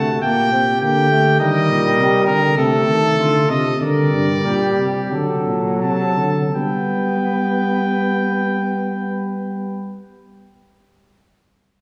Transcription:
Already playing: tuba C3, trombone A3, flugelhorn F#4, trumpet A5
0.22 tuba A#2, trombone A#3, flugelhorn G4, trumpet G5
0.52 trombone C4
0.81 tuba D3, trombone A#3, trumpet G5
1.10 trombone A3
1.39 tuba D#3, trombone G3, flugelhorn A#4, trumpet D#5
1.70 tuba A#2
1.99 tuba C3
2.27 tuba D3, trumpet A#4
2.58 tuba C3, trombone A3, trumpet A4, flugelhorn A4
2.88 tuba D#3
3.19 tuba D3, flugelhorn F4
3.50 tuba C3, trumpet D#5
3.81 tuba D3, trombone G3, flugelhorn A#4, trumpet D5
4.12 tuba G2
4.45 tuba A#2, flugelhorn G4
4.78 tuba C3
5.12 tuba D3, trombone F#3, flugelhorn A4
5.46 tuba A#2
5.81 tuba C3, flugelhorn A4, trumpet A5
6.17 tuba D3
6.54 tuba G3, trombone B3, flugelhorn B4, trumpet G5

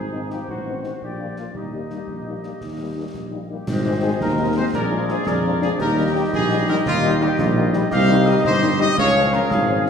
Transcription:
Already playing: tuba G#1, woodwind section D#4 C5, trumpet section G#4
0.13 french horn section F3 C4 D#4
0.30 french horn section F3 C4 D#4, trumpet section G4, snare
0.48 tuba A1, trumpet section F#4, woodwind section C5, concert bass drum
0.66 french horn section D#3 C4 D#4
0.83 french horn section D#3 C4 D#4, trumpet section F#4, snare
1.01 tuba A#1, woodwind section F4 D5, trumpet section G4, concert bass drum
1.19 french horn section F3 A#3 D4
1.37 french horn section F3 A#3 D4, trumpet section F4, snare
1.54 tuba D#2, trumpet section D#4, woodwind section G4 D#5, concert bass drum
1.72 french horn section G3 A#3 D#4
1.90 french horn section G3 A#3 D#4, snare
2.07 tuba A#1, concert bass drum
2.26 french horn section G3 A#3 D#4
2.43 french horn section G3 A#3 D#4, snare
2.61 tuba D#2, concert bass drum, snare
2.79 french horn section G3 A#3 D#4
2.97 french horn section G3 A#3 D#4
3.14 tuba A#1, concert bass drum, snare
3.32 french horn section G3 A#3 D#4
3.50 french horn section G3 A#3 D#4, trumpet section G4
3.67 tuba G#1, trombone section G#3 C4, woodwind section C5 D#5, concert bass drum, snare, crash
3.85 french horn section G#3 C4 D#4
4.02 french horn section G#3 C4 D#4, trumpet section G#4
4.20 tuba D#2, trumpet section A#4, concert bass drum, snare
4.38 french horn section G#3 C4 D#4, woodwind section A#4
4.56 french horn section G#3 C4 D#4, trumpet section C5
4.73 tuba A#1, trombone section D4, woodwind section G#4 D5, trumpet section A#4, concert bass drum, snare
4.90 french horn section F3 G#3 D4
5.08 french horn section F3 G#3 D4, trumpet section G#4, snare
5.26 tuba F2, woodwind section G#4 D5, trumpet section A#4, concert bass drum, snare
5.44 french horn section F3 G#3 D4
5.61 french horn section F3 G#3 D4, trumpet section G#4, snare
5.79 tuba D#2, trombone section G3 D#4, woodwind section G4 D#5, trumpet section A#4, concert bass drum, snare, crash
5.97 french horn section D#3 G3 D#4
6.14 french horn section D#3 G3 D#4, trumpet section G4
6.33 tuba A#1, trumpet section G#4, concert bass drum, snare
6.50 french horn section D#3 G3 D#4
6.68 french horn section D#3 G3 D#4, trumpet section A#4
6.86 tuba D#2, trumpet section F4, concert bass drum, snare
7.03 french horn section D#3 G3 D#4
7.21 french horn section D#3 G3 D#4, trumpet section G4, snare
7.38 tuba A#1, trumpet section F4, concert bass drum, snare
7.56 french horn section D#3 G3 D#4
7.73 french horn section D#3 G3 D#4, snare
7.90 tuba C2, trombone section G3 D#4, woodwind section G4 D#5, trumpet section F5, concert bass drum, snare, crash
8.09 french horn section D#3 G3 D#4
8.26 french horn section D#3 G3 D#4, trumpet section D#5
8.44 tuba G1, woodwind section G4 D#5, trumpet section C5, concert bass drum, snare
8.62 french horn section D#3 G3 D#4
8.80 french horn section D#3 G3 D#4, trumpet section D#5
8.96 tuba C#2, trombone section F3 C#4, woodwind section G#4 F5, trumpet section C#5, concert bass drum, snare
9.15 french horn section F3 C#4
9.33 french horn section F3 C#4, trumpet section A#4, snare
9.51 tuba G#1, trumpet section G#4, woodwind section G#4 F5, concert bass drum, snare
9.68 french horn section F3 C#4
9.86 french horn section F3 C#4, snare

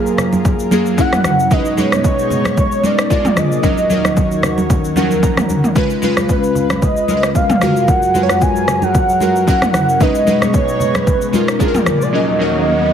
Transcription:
Already playing: analog synth pad F#2 F4 G#4 A#4, synth keys F#3 A#3 F4 G#4 A#4, soft synth lead G#4, downlifter
0.07 shaker
0.18 cross-stick, low conga, shaker
0.33 high conga, shaker
0.45 kick, low conga, shaker
0.59 shaker
0.71 synth keys F#3 A#3 F4 G#4, high conga, shaker
0.86 shaker
0.97 synth keys F#3 C#4 E4 A#4, analog synth pad F#3 E4, soft synth lead F#5, kick, shaker
1.13 cross-stick, mid tom, high conga, shaker
1.24 cross-stick, high conga, shaker
1.40 shaker
1.51 analog synth pad B2 G#3 D#4 C#5, synth keys G#3 C#4 D#4 B4, soft synth lead D#5, kick, low conga, shaker
1.65 shaker
1.77 synth keys G#3 C#4 D#4 B4, soft synth lead C#5, high conga, shaker
1.92 cross-stick, high conga, shaker
2.04 kick, shaker
2.19 shaker
2.30 low conga, shaker
2.45 cross-stick, high conga, shaker
2.57 soft synth lead C#5, kick, low conga, shaker
2.72 shaker
2.83 synth keys G#3 C#4 D#4 A#4, soft synth lead D5, high conga, shaker
2.99 cross-stick, shaker
3.10 analog synth pad A#2 F3 G#4 D5, synth keys G#3 D4 F4 A#4, kick, shaker
3.25 mid tom, high conga, shaker
3.37 soft synth lead D#5, cross-stick, high conga, shaker
3.52 shaker
3.63 analog synth pad D#2 D#3 F#4 C#5, synth keys F#3 C#4 D#4 A#4, kick, low conga, shaker
3.78 shaker
3.90 synth keys F#3 C#4 D#4 A#4, high conga, shaker
4.05 cross-stick, high conga, shaker
4.17 kick, shaker
4.32 shaker
4.43 cross-stick, low conga, shaker
4.58 high conga, shaker
4.70 kick, low conga, shaker
4.84 shaker
4.96 synth keys F3 C#4 D#4 A#4 F#5, high conga, shaker
5.02 synth keys F#3
5.11 high conga, shaker
5.23 synth keys A#5, kick, shaker
5.37 cross-stick, mid tom, high conga, shaker
5.49 high conga, shaker
5.64 mid tom, shaker
5.75 analog synth pad C#2 C#3 F4 B4, synth keys G#3 C#4 F4 B4, kick, low conga, shaker
5.90 shaker
6.02 synth keys G#3 C#4 F4 B4, high conga, shaker
6.17 cross-stick, high conga, shaker
6.29 soft synth lead B4, kick, shaker
6.44 shaker
6.55 low conga, shaker
6.70 cross-stick, high conga, shaker
6.82 soft synth lead D#5, kick, low conga, shaker
6.97 shaker
7.08 synth keys G#3 C#4 F4 A#4, high conga, shaker
7.17 synth keys B4
7.23 cross-stick, shaker
7.35 soft synth lead F5, kick, shaker
7.50 mid tom, high conga, shaker
7.61 analog synth pad F#2 F#3 G#4 A#4, synth keys G#3 F4 F#4 A#4, cross-stick, high conga, shaker
7.77 shaker
7.88 soft synth lead F#5, kick, low conga, shaker
8.03 shaker
8.14 synth keys G#3 F4 F#4 B4, high conga, shaker
8.23 synth keys C#5
8.29 cross-stick, high conga, shaker
8.42 soft synth lead G#5, kick, shaker
8.56 shaker
8.68 cross-stick, low conga, shaker
8.82 soft synth lead F#5, high conga, shaker
8.94 kick, low conga, shaker
9.09 shaker
9.20 synth keys G#3 F4 F#4 A#4, high conga, shaker
9.36 shaker
9.47 synth keys F#3 C#4 E4 A#4, analog synth pad F#3 E4, soft synth lead F#5, kick, shaker
9.62 cross-stick, mid tom, high conga, shaker
9.74 cross-stick, high conga, shaker
9.89 shaker
10.00 analog synth pad B2 G#3 D#4 C#5, synth keys G#3 C#4 D#4 B4, soft synth lead D#5, kick, riser, low conga, shaker
10.15 shaker
10.27 synth keys G#3 C#4 D#4 B4, high conga, shaker
10.42 cross-stick, high conga, shaker
10.54 soft synth lead C#5, kick, shaker
10.68 shaker
10.80 low conga, shaker
10.95 soft synth lead B4, cross-stick, high conga, shaker
11.07 kick, low conga, shaker
11.22 shaker
11.33 synth keys G#3 C#4 D#4 F4, soft synth lead A#4, high conga, shaker
11.48 cross-stick, shaker
11.59 analog synth pad A#2 F3 G#4 D5, synth keys G#3 D4 F4 G#4, kick, shaker
11.68 synth keys A#4
11.74 mid tom, high conga, shaker
11.86 cross-stick, high conga, shaker
12.02 soft synth lead D5, shaker
12.13 analog synth pad D#2 D#3 F#4 C#5, synth keys F#3 C#4 D#4 A#4, soft synth lead D#5
12.39 synth keys F#3 C#4 D#4 A#4

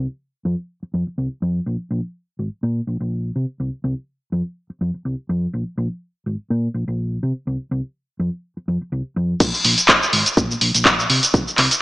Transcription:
0.45 fingered electric bass F2
0.83 muted fingered electric bass stroke
0.94 fingered electric bass F2
1.07 muted fingered electric bass stroke
1.18 fingered electric bass C2
1.42 fingered electric bass F2
1.66 fingered electric bass A#1
1.90 fingered electric bass A#1
2.39 fingered electric bass G#1
2.63 fingered electric bass A#2
2.87 fingered electric bass A#1
3.00 fingered electric bass A#1
3.36 fingered electric bass C3
3.60 fingered electric bass C2
3.84 fingered electric bass C2
4.32 fingered electric bass F2
4.70 muted fingered electric bass stroke
4.81 fingered electric bass F2
4.94 muted fingered electric bass stroke
5.05 fingered electric bass C2
5.29 fingered electric bass F2
5.53 fingered electric bass A#1
5.77 fingered electric bass A#1
6.26 fingered electric bass G#1
6.50 fingered electric bass A#2
6.74 fingered electric bass A#1
6.88 fingered electric bass A#1
7.23 fingered electric bass C3
7.47 fingered electric bass C2
7.71 fingered electric bass C2
8.19 fingered electric bass F2
8.57 muted fingered electric bass stroke
8.68 fingered electric bass F2
8.81 muted fingered electric bass stroke
8.92 fingered electric bass C2
9.16 fingered electric bass F2
9.40 fingered electric bass A#1, kick, closed hi-hat, crash, shaker
9.54 shaker
9.65 fingered electric bass A#1, open hi-hat
9.78 closed hi-hat, shaker
9.88 kick, clap, closed hi-hat, shaker
10.03 shaker
10.13 fingered electric bass G#1, open hi-hat
10.26 closed hi-hat, shaker
10.37 fingered electric bass A#2, kick, closed hi-hat, shaker
10.51 shaker
10.61 fingered electric bass A#1, open hi-hat
10.75 fingered electric bass A#1, closed hi-hat, shaker
10.85 kick, clap, closed hi-hat, shaker
10.99 shaker
11.10 fingered electric bass C3, open hi-hat
11.23 closed hi-hat, shaker
11.34 fingered electric bass C2, kick, closed hi-hat, shaker
11.48 shaker
11.58 fingered electric bass C2, clap, open hi-hat
11.71 closed hi-hat, shaker

